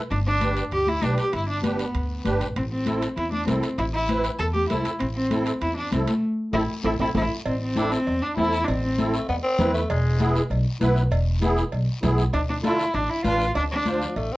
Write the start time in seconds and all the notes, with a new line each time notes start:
0.11 G1 D4, high timbale, long guiro
0.26 D4
0.41 D4 G4 B4, high conga, high timbale, short guiro
0.57 high timbale, short guiro
0.71 D2 G4, high timbale, long guiro
0.87 E4, high conga
1.02 B1 D4 G4 B4, high conga, high timbale, short guiro
1.18 G4, high timbale, short guiro
1.33 G1 E4, high timbale, long guiro
1.49 D4
1.64 B3 D4 G4 B4, high conga, high timbale, short guiro
1.79 high timbale, short guiro
1.94 D2, high timbale, long guiro
2.25 G1 D4 G4 B4, high conga, high timbale, short guiro
2.40 A1, high timbale, short guiro
2.56 A1 C4, high timbale, long guiro
2.72 C4
2.86 C4 E4 A4, high conga, high timbale, short guiro
3.02 high timbale, short guiro
3.17 E2 E4, high timbale, long guiro
3.32 D4, high conga
3.47 C2 C4 E4 A4, high conga, high timbale, low timbale, short guiro
3.63 high timbale, short guiro
3.78 A1 E4, high timbale, long guiro
3.93 E4
4.09 C4 E4 B4, high conga, high timbale, short guiro
4.24 high timbale, short guiro
4.39 E2 A4, high timbale, long guiro
4.54 G4, high conga
4.69 C2 C4 E4 A4, high conga, high timbale, low timbale, short guiro
4.85 high timbale, short guiro
4.99 A1 C4, high timbale, long guiro
5.15 C4
5.31 C4 E4 A4, high conga, high timbale, short guiro
5.46 high timbale, short guiro
5.61 E2 E4, high timbale, long guiro
5.77 D4
5.91 C2 C4 E4 A4, high conga, high timbale, short guiro
6.07 A3, high timbale, short guiro
6.53 A1 C4 E4 A4, high conga, high timbale, long guiro
6.84 A1 C4 E4 A4, high conga, high timbale, long guiro
6.99 A1 C4 E4 A4, high conga, high timbale, long guiro
7.15 A1 C4 E4 A4, high conga, high timbale, long guiro
7.45 A1 C4, cowbell, high conga, long guiro
7.61 C4
7.76 C4 D4 E4 A4, cowbell, high conga, short guiro
7.91 C4, short guiro
8.06 E2, cowbell, high conga, long guiro
8.22 D4
8.37 E2 C4 E4 A4, cowbell, high conga, low timbale, short guiro
8.53 short guiro
8.64 A1 C4 D4, high conga
8.68 cowbell, long guiro
8.83 C4
8.98 C4 E4 A4, cowbell, high conga, short guiro
9.14 A3, short guiro
9.29 E2 B3, cowbell, high conga, long guiro
9.43 C4
9.59 E2 C4 E4 B4, cowbell, high conga, low conga, short guiro
9.74 A3, short guiro
9.90 E1 G#3, cowbell, high conga, long guiro
10.20 B3 E4 G#4, cowbell, high conga, short guiro
10.36 short guiro
10.50 B1, cowbell, high conga, long guiro
10.81 B1 B3 E4 B4, cowbell, high conga, short guiro
10.96 short guiro
11.11 E1, cowbell, high conga, long guiro
11.42 B3 E4 G#4, cowbell, high conga, short guiro
11.57 short guiro
11.72 B1, cowbell, high conga, long guiro
12.02 B1 B3 E4 G#4, cowbell, high conga, low conga, low timbale, short guiro
12.18 short guiro
12.33 D2 D4, cowbell, high conga, long guiro
12.49 D4
12.63 D4 E4 F4 A4, cowbell, high conga, short guiro
12.80 short guiro
12.94 A1 D4, cowbell, high conga, long guiro
13.10 E4
13.24 A1 D4 F4 B4, cowbell, high conga, short guiro
13.40 short guiro
13.55 D2 D4, cowbell, high conga, long guiro
13.71 D4
13.85 D4 F4 C5, cowbell, high conga, short guiro
14.01 F3, short guiro
14.16 A1 A3, cowbell, high conga, long guiro
14.33 C4